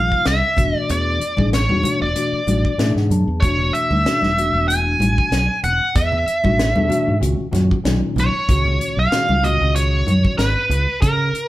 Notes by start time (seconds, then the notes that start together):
Already playing: C3 F3 A#3 D#4 F4 F5
0.12 kick
0.25 C2 E5, snare, closed hi-hat
0.57 E1 B2 E3 A3 D4 F#4, kick, closed hi-hat, low conga
0.76 D5
0.89 E2 D5, closed hi-hat
1.21 muted fingered electric bass stroke, closed hi-hat
1.37 A1 B2 E3 A3 D4 G#4, kick, high conga
1.53 C#5, snare, closed hi-hat
1.69 E2 B2 E3 A3 D4 F#4, high conga
1.83 B2 E3 A3 D4 F#4, muted fingered electric bass stroke, closed hi-hat, high conga, low conga
2.02 E1 D5
2.15 B2 E3 A3 D4 F#4, closed hi-hat
2.33 muted fingered electric bass stroke
2.47 A1 B2 E3 A3 D4 F#4, closed hi-hat, high conga
2.65 kick
2.78 A2 B2 E3 A3 D4 G#4 E5, snare, closed hi-hat
2.95 G#2 F#5, snare
3.10 F#2 A5, closed hi-hat, low conga
3.28 E2
3.40 E1 B2 E3 A3 F#4 C#5, kick, closed hi-hat
3.44 D4
3.59 low conga
3.73 E5, closed hi-hat
3.90 D2, high conga
4.05 B2 E3 A3 D4 F#4, muted fingered electric bass stroke, snare, closed hi-hat
4.22 E1, snare, high conga
4.37 B2 E3 A3 D4 F#4, closed hi-hat
4.53 E1
4.68 G#5, closed hi-hat
5.00 A1, closed hi-hat, high conga
5.18 kick
5.31 B1, snare, closed hi-hat
5.63 E1 F#5, closed hi-hat, low conga
5.95 E2 E5, kick, closed hi-hat
6.12 low conga
6.27 muted fingered electric bass stroke, closed hi-hat
6.44 A1 B2 E3 A3 D4 F#4, kick, high conga
6.59 snare, closed hi-hat
6.76 E2 B2 E3 A3 D4 A4, high conga
6.88 B2 E3 A3 D4 F#4, muted fingered electric bass stroke, closed hi-hat, low conga
7.08 G#2
7.20 C#2 A#2 D#3 G#3 C#4 F#4, closed hi-hat
7.39 muted fingered electric bass stroke
7.51 F#2 A#2 D#3 G#3 C#4 F#4, snare, closed hi-hat, high conga
7.71 kick
7.84 B1 A#2 D#3 G#3 C#4 D#4, snare, closed hi-hat
8.16 B1, closed hi-hat, low conga
8.20 C#5
8.49 C#2 A#2 D#3 G#3 C#4 F#4, kick, closed hi-hat
8.65 low conga
8.81 closed hi-hat
8.97 B1 F5
9.12 A#2 D#3 G#3 C#4 F#4, snare, closed hi-hat
9.29 C#2, high conga
9.42 A#2 D#3 G#3 C#4 F#4 D#5, closed hi-hat, low conga
9.61 C#2
9.75 C#5, closed hi-hat
10.07 F#2, closed hi-hat, high conga
10.25 kick
10.38 G#1 B4, snare, closed hi-hat
10.69 C#2, closed hi-hat, low conga
11.02 C#3 A#4, kick, closed hi-hat
11.33 muted fingered electric bass stroke, closed hi-hat